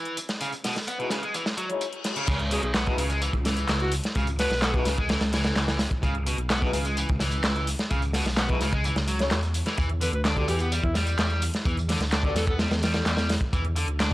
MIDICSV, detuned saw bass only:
0, 0, Header, 1, 2, 480
1, 0, Start_track
1, 0, Tempo, 468750
1, 416, Time_signature, 4, 2, 24, 8
1, 14477, End_track
2, 0, Start_track
2, 0, Title_t, "Detuned saw bass"
2, 0, Program_c, 0, 39
2, 2331, Note_on_c, 0, 37, 99
2, 2654, Note_off_c, 0, 37, 0
2, 2691, Note_on_c, 0, 35, 88
2, 3013, Note_off_c, 0, 35, 0
2, 3048, Note_on_c, 0, 37, 102
2, 3372, Note_off_c, 0, 37, 0
2, 3413, Note_on_c, 0, 37, 94
2, 3735, Note_off_c, 0, 37, 0
2, 3775, Note_on_c, 0, 37, 81
2, 4095, Note_off_c, 0, 37, 0
2, 4256, Note_on_c, 0, 37, 97
2, 4576, Note_off_c, 0, 37, 0
2, 4612, Note_on_c, 0, 35, 91
2, 4934, Note_off_c, 0, 35, 0
2, 4971, Note_on_c, 0, 37, 100
2, 5294, Note_off_c, 0, 37, 0
2, 5333, Note_on_c, 0, 37, 94
2, 5654, Note_off_c, 0, 37, 0
2, 5691, Note_on_c, 0, 37, 81
2, 6013, Note_off_c, 0, 37, 0
2, 6172, Note_on_c, 0, 37, 96
2, 6494, Note_off_c, 0, 37, 0
2, 6532, Note_on_c, 0, 35, 87
2, 6854, Note_off_c, 0, 35, 0
2, 6890, Note_on_c, 0, 37, 97
2, 7213, Note_off_c, 0, 37, 0
2, 7266, Note_on_c, 0, 37, 97
2, 7581, Note_off_c, 0, 37, 0
2, 7608, Note_on_c, 0, 37, 89
2, 7932, Note_off_c, 0, 37, 0
2, 8097, Note_on_c, 0, 37, 101
2, 8416, Note_off_c, 0, 37, 0
2, 8449, Note_on_c, 0, 35, 90
2, 8772, Note_off_c, 0, 35, 0
2, 8812, Note_on_c, 0, 37, 102
2, 9134, Note_off_c, 0, 37, 0
2, 9172, Note_on_c, 0, 37, 98
2, 9528, Note_on_c, 0, 40, 100
2, 9543, Note_off_c, 0, 37, 0
2, 9852, Note_off_c, 0, 40, 0
2, 10015, Note_on_c, 0, 40, 96
2, 10336, Note_off_c, 0, 40, 0
2, 10369, Note_on_c, 0, 38, 93
2, 10693, Note_off_c, 0, 38, 0
2, 10730, Note_on_c, 0, 40, 98
2, 11053, Note_off_c, 0, 40, 0
2, 11094, Note_on_c, 0, 40, 94
2, 11415, Note_off_c, 0, 40, 0
2, 11453, Note_on_c, 0, 40, 83
2, 11774, Note_off_c, 0, 40, 0
2, 11931, Note_on_c, 0, 40, 97
2, 12254, Note_off_c, 0, 40, 0
2, 12289, Note_on_c, 0, 38, 90
2, 12613, Note_off_c, 0, 38, 0
2, 12650, Note_on_c, 0, 40, 106
2, 12973, Note_off_c, 0, 40, 0
2, 13010, Note_on_c, 0, 40, 99
2, 13333, Note_off_c, 0, 40, 0
2, 13370, Note_on_c, 0, 40, 83
2, 13693, Note_off_c, 0, 40, 0
2, 13854, Note_on_c, 0, 40, 101
2, 14175, Note_off_c, 0, 40, 0
2, 14208, Note_on_c, 0, 38, 93
2, 14477, Note_off_c, 0, 38, 0
2, 14477, End_track
0, 0, End_of_file